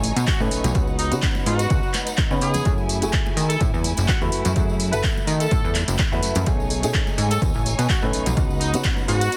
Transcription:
Already playing: A1 A3 C#4 D#4 G#4 C#5 G#5
0.03 open hi-hat, tambourine, high conga
0.16 B2, closed hi-hat, tambourine
0.27 F#4, kick, clap, closed hi-hat, tambourine
0.40 A2 A3 C#4 D#4 B4, tambourine
0.51 B1, open hi-hat, tambourine
0.64 B1, closed hi-hat, tambourine, high conga, low conga
0.74 C#2 B3 C#4 D#4 F#4 B4 F#5, kick, closed hi-hat, tambourine
0.87 tambourine
0.99 D#4, open hi-hat, tambourine
1.11 C#3 B3 C#4 D#4 F#4, closed hi-hat, tambourine
1.22 kick, clap, closed hi-hat, tambourine
1.35 tambourine, high conga
1.46 G#2 F#4, open hi-hat, tambourine
1.59 closed hi-hat, tambourine
1.70 C#2, kick, closed hi-hat, tambourine
1.83 tambourine
1.94 clap, open hi-hat, tambourine, high conga
2.07 closed hi-hat, tambourine
2.18 kick, clap, closed hi-hat
2.30 C#3 B3 C#4 D#4 B4, tambourine
2.41 C#3 G#4, open hi-hat, tambourine
2.54 closed hi-hat, tambourine, high conga, low conga
2.65 F#2 A3 E4 F#4 G#4 G#5, kick, closed hi-hat, tambourine
2.78 tambourine
2.89 open hi-hat, tambourine
3.01 F#1 A3 E4 F#4 G#4, closed hi-hat, tambourine
3.13 kick, clap, closed hi-hat, tambourine
3.26 tambourine, high conga
3.37 D#3, open hi-hat, tambourine
3.50 A4, closed hi-hat, tambourine
3.60 A2, kick, closed hi-hat, tambourine
3.74 E2, tambourine
3.84 open hi-hat, tambourine, high conga
3.97 F#1, closed hi-hat, tambourine
4.08 F#4, kick, clap, closed hi-hat
4.21 E2 A3 E4 F#4 B4, tambourine
4.32 F#2, open hi-hat, tambourine
4.45 F#2, closed hi-hat, tambourine, high conga, low conga
4.55 F#2 A3 E4 F#4 G#4, kick, closed hi-hat, tambourine
4.69 tambourine
4.80 open hi-hat, tambourine
4.92 F#1 A3 E4 F#4 A4 B4, closed hi-hat, tambourine
5.03 kick, clap, closed hi-hat, tambourine
5.17 tambourine, high conga
5.27 D#3, open hi-hat, tambourine
5.40 A4, closed hi-hat, tambourine
5.51 A2, kick, closed hi-hat, tambourine
5.64 E2, tambourine
5.75 clap, open hi-hat, tambourine, high conga
5.88 F#1, closed hi-hat, tambourine
5.99 kick, clap, closed hi-hat, tambourine
6.12 E2 A3 E4 F#4 B4, tambourine
6.23 F#2, open hi-hat, tambourine
6.35 F#2, closed hi-hat, tambourine, high conga, low conga
6.46 B1 A3 C#4 D#4 G#4 C#5 G#5, kick, closed hi-hat, tambourine
6.60 tambourine
6.70 open hi-hat, tambourine
6.82 B2 A3 C#4 D#4 G#4, closed hi-hat, tambourine
6.94 kick, clap, closed hi-hat
7.07 tambourine, high conga
7.18 G#2, open hi-hat, tambourine
7.31 A4, closed hi-hat, tambourine
7.42 D#2, kick, closed hi-hat, tambourine
7.54 A1, tambourine
7.65 open hi-hat, tambourine, high conga
7.79 B2, closed hi-hat, tambourine
7.89 F#4, kick, clap, closed hi-hat, tambourine
8.02 A2 A3 C#4 D#4 B4, tambourine
8.13 B1, open hi-hat, tambourine
8.26 B1, closed hi-hat, tambourine, high conga, low conga
8.37 C#2 B3 C#4 D#4 F#4 B4 F#5, kick, closed hi-hat, tambourine
8.50 tambourine
8.60 D#4, open hi-hat, tambourine
8.73 C#3 B3 C#4 D#4 F#4, closed hi-hat, tambourine
8.84 kick, clap, closed hi-hat, tambourine
8.97 tambourine, high conga
9.08 G#2 F#4, open hi-hat, tambourine
9.21 closed hi-hat, tambourine
9.32 closed hi-hat, tambourine

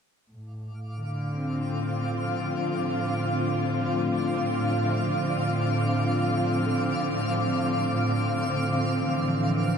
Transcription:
0.30 A2 F5 D6
0.97 D3
1.34 C4
1.41 F4
2.17 F3
2.58 C4
3.93 A3
4.84 E5
5.30 D5
6.66 A4
8.97 E3

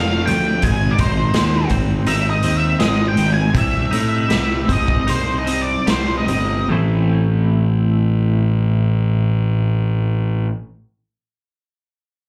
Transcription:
Already playing: F1 A3 C4 F4 F5
0.26 D2 F3 G5, closed hi-hat
0.62 G#1 G#2 G#5, kick, closed hi-hat
0.91 D5
0.98 G#1 D#4 C5, kick, closed hi-hat
1.34 D#2 G#3, snare, closed hi-hat
1.69 G#1 C4, kick, closed hi-hat
2.06 G#1 D#4 E5, closed hi-hat
2.30 D#5
2.43 D#2 C4, closed hi-hat
2.57 E5
2.79 G#1 G#3 D#5, snare, closed hi-hat
3.08 G5
3.17 G#1 D#3, closed hi-hat
3.34 G#5
3.53 C2 C3, kick, closed hi-hat
3.58 E5
3.91 A2 D#4, closed hi-hat
4.29 C2 G3, snare, closed hi-hat
4.68 C2 C4 D#5, kick, closed hi-hat
4.88 kick
5.07 C2 D#4 C5, closed hi-hat
5.38 D#5
5.46 C4, closed hi-hat
5.62 D5
5.87 C2 G3 C5, snare, closed hi-hat
6.18 D#5
6.27 G1 C3, closed hi-hat
6.68 A1 A2 E3 A3 C4 E4

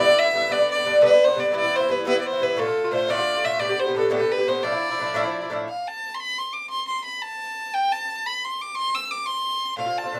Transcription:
0.00 D5
0.06 D3 B3 E4
0.19 E5
0.24 D3 B3 E4
0.33 G2 D3 B3 E4
0.49 G2 D3 B3 D4 D5
0.59 D3 B3 D4
0.71 D5
0.77 D3 B3 D4
0.84 G2 D3 B3 D4
1.01 G2 D3 B3 D4 B4
1.11 D3 B3 D4
1.24 D4 C5
1.30 D3 B3
1.35 G2 D3 B3 D4
1.40 D5
1.52 G2 E3 B3 E4
1.56 D5
1.62 E3 B3 E4
1.76 C5
1.80 E3 B3 E4
1.88 G2 E3 B3 E4 B4
2.05 G2 E3 B3 E4 B4
2.15 E3 B3 E4
2.21 D5
2.27 C5
2.33 E3 B3 E4
2.40 G2 E3 B3 E4 B4
2.57 A2 D3 A3 F4 A4
2.66 D3 A3 F4
2.84 D3 A3 F4
2.91 A2 D3 A3 F4 C5
3.08 A2 D3 A3 F4 D5
3.18 D3 A3 F4
3.35 D3 A3 F4
3.43 A2 D3 A3 F4 E5
3.59 A2 D3 B3 G4 D5
3.69 D3 B3 G4
3.79 C5
3.87 D3 B3 G4
3.95 A2 D3 B3 G4 A4
4.10 A2 D3 B3 G4
4.15 A4
4.19 D3 B3 G4
4.32 B4
4.38 D3 B3 G4
4.47 A2 D3 B3 G4 C5
4.63 A2 F3 D4 E4 D5
4.72 F3 D4 E4
4.91 F3 D4 E4
4.99 A2 F3 D4 E4
5.14 A2 F3 D4 E4
5.23 F3 D4 E4
5.42 F3 D4 E4
5.50 A2 F3 D4 E4
5.69 F5
5.88 A5
6.14 C6
6.20 B5
6.38 C6
6.53 D6
6.70 C6
6.88 C6
7.04 B5
7.22 A5
7.74 G5
7.92 A5
8.26 B5
8.45 C6
8.61 D6
8.75 C6
8.95 E6
9.11 D6
9.26 C6
9.77 A2 D3 C4 F4 F5
9.86 D3 C4 F4
9.98 A5
10.04 D3 C4 F4
10.12 A2 D3 C4 F4

